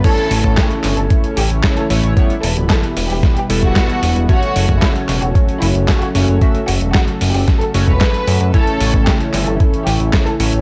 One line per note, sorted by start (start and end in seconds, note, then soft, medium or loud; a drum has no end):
0.04 2.15 C#3 medium
0.04 4.25 E3 medium
0.04 1.87 A3 medium
0.04 2.15 A3 medium
0.04 1.87 C#4 medium
0.04 1.87 E4 medium
0.04 4.25 E4 medium
0.04 0.51 A4 loud
0.04 2.15 A4 medium
0.04 1.87 C#5 loud
0.04 kick loud
0.04 closed hi-hat medium
0.04 crash loud
0.18 closed hi-hat soft
0.31 0.42 A1 medium
0.31 open hi-hat loud
0.44 0.55 A1 medium
0.44 kick medium
0.44 closed hi-hat soft
0.57 0.93 G4 medium
0.57 kick loud
0.57 snare loud
0.57 clap loud
0.57 closed hi-hat medium
0.71 closed hi-hat soft
0.84 0.95 G1 medium
0.84 clap medium
0.84 open hi-hat loud
0.97 1.08 G1 medium
0.97 1.32 A4 medium
0.97 closed hi-hat soft
1.10 kick loud
1.10 closed hi-hat medium
1.24 closed hi-hat soft
1.37 1.48 A1 loud
1.37 1.72 G4 loud
1.37 open hi-hat loud
1.50 1.61 A1 medium
1.50 closed hi-hat soft
1.64 kick loud
1.64 snare loud
1.64 clap medium
1.64 closed hi-hat medium
1.77 2.12 A4 medium
1.77 closed hi-hat soft
1.90 2.01 A1 loud
1.90 2.13 A3 medium
1.90 2.14 C#4 medium
1.90 2.14 E4 medium
1.90 2.14 C#5 loud
1.90 open hi-hat loud
2.03 2.15 A1 medium
2.03 closed hi-hat soft
2.17 4.27 B2 medium
2.17 2.35 G3 medium
2.17 4.27 G3 medium
2.17 2.35 B3 medium
2.17 2.35 E4 medium
2.17 4.27 B4 medium
2.17 2.35 C#5 medium
2.17 kick loud
2.17 closed hi-hat medium
2.30 closed hi-hat soft
2.43 2.54 E1 loud
2.43 2.67 A4 medium
2.43 open hi-hat loud
2.57 2.68 D1 medium
2.57 closed hi-hat soft
2.70 3.05 A4 medium
2.70 kick loud
2.70 snare loud
2.70 clap medium
2.70 closed hi-hat medium
2.83 closed hi-hat soft
2.97 3.08 E1 loud
2.97 open hi-hat loud
3.10 3.21 E1 medium
3.10 3.33 G4 medium
3.10 open hi-hat medium
3.23 kick loud
3.23 snare medium
3.23 closed hi-hat medium
3.36 3.60 G4 medium
3.36 closed hi-hat soft
3.50 3.61 E1 loud
3.50 4.26 G3 medium
3.50 4.26 B3 medium
3.50 4.26 E4 medium
3.50 4.26 A4 medium
3.50 open hi-hat loud
3.63 3.74 E1 medium
3.63 4.18 F#4 loud
3.63 kick medium
3.63 closed hi-hat soft
3.76 kick loud
3.76 snare loud
3.76 clap loud
3.76 closed hi-hat medium
3.90 closed hi-hat soft
4.03 4.14 E1 medium
4.03 open hi-hat loud
4.16 4.27 E1 medium
4.16 closed hi-hat soft
4.29 10.61 C#3 medium
4.29 8.50 F#3 medium
4.29 8.50 A3 medium
4.29 6.12 A3 medium
4.29 6.12 C#4 medium
4.29 4.76 F#4 loud
4.29 8.50 F#4 medium
4.29 6.12 F#4 medium
4.29 10.61 A4 medium
4.29 6.12 C#5 loud
4.29 kick loud
4.29 closed hi-hat medium
4.43 closed hi-hat soft
4.56 4.67 F#1 loud
4.56 open hi-hat loud
4.69 4.80 F#1 medium
4.69 kick medium
4.69 closed hi-hat soft
4.82 5.17 E4 loud
4.82 kick loud
4.82 snare loud
4.82 clap loud
4.82 closed hi-hat medium
4.96 closed hi-hat soft
5.09 5.20 E1 medium
5.09 clap medium
5.09 open hi-hat loud
5.22 5.33 E1 medium
5.22 5.57 F#4 medium
5.22 closed hi-hat soft
5.35 kick loud
5.35 closed hi-hat medium
5.49 closed hi-hat soft
5.62 5.73 F#1 loud
5.62 5.97 E4 medium
5.62 open hi-hat loud
5.75 5.86 F#1 medium
5.75 closed hi-hat soft
5.88 kick loud
5.88 snare loud
5.88 clap medium
5.88 closed hi-hat medium
6.02 6.37 F#4 loud
6.02 closed hi-hat soft
6.15 6.26 F#1 medium
6.15 6.38 A3 loud
6.15 6.38 C#4 medium
6.15 6.38 F#4 medium
6.15 6.38 C#5 loud
6.15 open hi-hat loud
6.28 6.39 F#1 medium
6.28 closed hi-hat soft
6.41 6.60 A3 medium
6.41 6.60 C#4 medium
6.41 6.60 F#4 medium
6.41 6.60 E5 medium
6.41 kick loud
6.41 closed hi-hat medium
6.55 closed hi-hat soft
6.68 6.79 F#1 loud
6.68 6.91 F#4 medium
6.68 open hi-hat loud
6.81 6.92 E1 medium
6.81 closed hi-hat soft
6.94 7.30 F#4 loud
6.94 kick loud
6.94 snare loud
6.94 clap medium
6.94 closed hi-hat medium
7.08 closed hi-hat soft
7.21 7.32 F#1 medium
7.21 open hi-hat loud
7.34 7.46 F#1 medium
7.34 7.58 G4 medium
7.34 open hi-hat medium
7.48 kick loud
7.48 snare medium
7.48 closed hi-hat medium
7.61 7.84 A4 medium
7.61 closed hi-hat soft
7.74 7.85 F#1 loud
7.74 7.92 A3 medium
7.74 7.92 C#4 medium
7.74 7.92 F#4 medium
7.74 7.92 C#5 loud
7.74 open hi-hat loud
7.87 7.99 E1 medium
7.87 8.43 B4 medium
7.87 kick medium
7.87 closed hi-hat soft
8.01 kick loud
8.01 snare loud
8.01 clap medium
8.01 closed hi-hat medium
8.14 closed hi-hat soft
8.27 8.39 F#2 loud
8.27 open hi-hat loud
8.41 8.52 F#2 medium
8.41 closed hi-hat soft
8.54 10.61 E3 medium
8.54 10.37 A3 medium
8.54 10.61 A3 medium
8.54 10.37 C#4 medium
8.54 10.37 E4 medium
8.54 10.61 E4 medium
8.54 9.01 A4 loud
8.54 10.37 C#5 loud
8.54 kick loud
8.54 closed hi-hat medium
8.67 closed hi-hat soft
8.80 8.92 A1 loud
8.80 open hi-hat loud
8.94 9.05 A1 medium
8.94 kick medium
8.94 closed hi-hat soft
9.07 9.42 G4 medium
9.07 kick loud
9.07 snare loud
9.07 clap medium
9.07 closed hi-hat medium
9.20 closed hi-hat soft
9.34 9.45 G1 loud
9.34 clap soft
9.34 open hi-hat loud
9.47 9.58 G1 medium
9.47 9.82 A4 medium
9.47 closed hi-hat soft
9.60 kick loud
9.60 closed hi-hat medium
9.74 closed hi-hat soft
9.87 9.98 A1 loud
9.87 10.22 G4 medium
9.87 open hi-hat loud
10.00 10.11 A1 medium
10.00 closed hi-hat soft
10.13 kick loud
10.13 snare loud
10.13 clap medium
10.13 closed hi-hat medium
10.27 10.61 A4 medium
10.27 closed hi-hat soft
10.40 10.51 A1 loud
10.40 10.61 A3 loud
10.40 10.61 C#4 medium
10.40 10.61 E4 medium
10.40 10.61 C#5 loud
10.40 open hi-hat loud
10.53 10.61 A1 medium
10.53 closed hi-hat soft